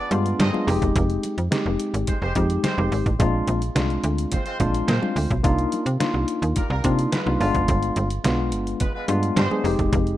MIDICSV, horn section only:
0, 0, Header, 1, 2, 480
1, 0, Start_track
1, 0, Key_signature, -3, "minor"
1, 0, Tempo, 560748
1, 817, Time_signature, 4, 2, 24, 8
1, 8707, End_track
2, 0, Start_track
2, 0, Title_t, "Horn section"
2, 0, Program_c, 0, 61
2, 336, Note_on_c, 0, 63, 99
2, 336, Note_on_c, 0, 75, 108
2, 338, Note_on_c, 0, 60, 91
2, 338, Note_on_c, 0, 68, 86
2, 679, Note_off_c, 0, 60, 0
2, 679, Note_off_c, 0, 63, 0
2, 679, Note_off_c, 0, 75, 0
2, 680, Note_off_c, 0, 68, 0
2, 1773, Note_on_c, 0, 67, 83
2, 1775, Note_on_c, 0, 56, 81
2, 1777, Note_on_c, 0, 60, 80
2, 1777, Note_on_c, 0, 72, 87
2, 1877, Note_off_c, 0, 67, 0
2, 1878, Note_off_c, 0, 56, 0
2, 1879, Note_off_c, 0, 60, 0
2, 1879, Note_off_c, 0, 72, 0
2, 1896, Note_on_c, 0, 56, 96
2, 1896, Note_on_c, 0, 67, 101
2, 1897, Note_on_c, 0, 60, 98
2, 1897, Note_on_c, 0, 72, 107
2, 1999, Note_off_c, 0, 56, 0
2, 1999, Note_off_c, 0, 60, 0
2, 1999, Note_off_c, 0, 67, 0
2, 1999, Note_off_c, 0, 72, 0
2, 2257, Note_on_c, 0, 60, 101
2, 2257, Note_on_c, 0, 72, 110
2, 2259, Note_on_c, 0, 67, 86
2, 2260, Note_on_c, 0, 56, 85
2, 2599, Note_off_c, 0, 60, 0
2, 2599, Note_off_c, 0, 72, 0
2, 2600, Note_off_c, 0, 56, 0
2, 2600, Note_off_c, 0, 67, 0
2, 3695, Note_on_c, 0, 56, 78
2, 3695, Note_on_c, 0, 60, 80
2, 3695, Note_on_c, 0, 72, 87
2, 3697, Note_on_c, 0, 65, 86
2, 3798, Note_off_c, 0, 56, 0
2, 3798, Note_off_c, 0, 60, 0
2, 3798, Note_off_c, 0, 72, 0
2, 3799, Note_off_c, 0, 65, 0
2, 3813, Note_on_c, 0, 56, 90
2, 3813, Note_on_c, 0, 60, 105
2, 3813, Note_on_c, 0, 65, 95
2, 3813, Note_on_c, 0, 72, 114
2, 3917, Note_off_c, 0, 56, 0
2, 3917, Note_off_c, 0, 60, 0
2, 3917, Note_off_c, 0, 65, 0
2, 3917, Note_off_c, 0, 72, 0
2, 4170, Note_on_c, 0, 56, 87
2, 4173, Note_on_c, 0, 60, 91
2, 4173, Note_on_c, 0, 65, 89
2, 4173, Note_on_c, 0, 72, 99
2, 4516, Note_off_c, 0, 56, 0
2, 4517, Note_off_c, 0, 60, 0
2, 4517, Note_off_c, 0, 65, 0
2, 4517, Note_off_c, 0, 72, 0
2, 5615, Note_on_c, 0, 55, 80
2, 5616, Note_on_c, 0, 65, 81
2, 5618, Note_on_c, 0, 58, 87
2, 5618, Note_on_c, 0, 70, 94
2, 5718, Note_off_c, 0, 55, 0
2, 5719, Note_off_c, 0, 65, 0
2, 5720, Note_off_c, 0, 58, 0
2, 5720, Note_off_c, 0, 70, 0
2, 5735, Note_on_c, 0, 55, 97
2, 5736, Note_on_c, 0, 58, 96
2, 5736, Note_on_c, 0, 65, 97
2, 5736, Note_on_c, 0, 70, 104
2, 5838, Note_off_c, 0, 55, 0
2, 5838, Note_off_c, 0, 65, 0
2, 5839, Note_off_c, 0, 58, 0
2, 5839, Note_off_c, 0, 70, 0
2, 6092, Note_on_c, 0, 56, 89
2, 6092, Note_on_c, 0, 59, 83
2, 6092, Note_on_c, 0, 71, 90
2, 6095, Note_on_c, 0, 65, 94
2, 6437, Note_off_c, 0, 56, 0
2, 6437, Note_off_c, 0, 59, 0
2, 6437, Note_off_c, 0, 71, 0
2, 6438, Note_off_c, 0, 65, 0
2, 7536, Note_on_c, 0, 59, 77
2, 7536, Note_on_c, 0, 65, 75
2, 7536, Note_on_c, 0, 71, 84
2, 7538, Note_on_c, 0, 56, 85
2, 7638, Note_off_c, 0, 65, 0
2, 7639, Note_off_c, 0, 59, 0
2, 7639, Note_off_c, 0, 71, 0
2, 7640, Note_off_c, 0, 56, 0
2, 7657, Note_on_c, 0, 56, 96
2, 7657, Note_on_c, 0, 59, 96
2, 7657, Note_on_c, 0, 71, 104
2, 7658, Note_on_c, 0, 65, 102
2, 7759, Note_off_c, 0, 56, 0
2, 7759, Note_off_c, 0, 59, 0
2, 7759, Note_off_c, 0, 65, 0
2, 7759, Note_off_c, 0, 71, 0
2, 8017, Note_on_c, 0, 56, 92
2, 8017, Note_on_c, 0, 67, 92
2, 8018, Note_on_c, 0, 60, 103
2, 8018, Note_on_c, 0, 72, 112
2, 8359, Note_off_c, 0, 56, 0
2, 8359, Note_off_c, 0, 60, 0
2, 8359, Note_off_c, 0, 67, 0
2, 8359, Note_off_c, 0, 72, 0
2, 8707, End_track
0, 0, End_of_file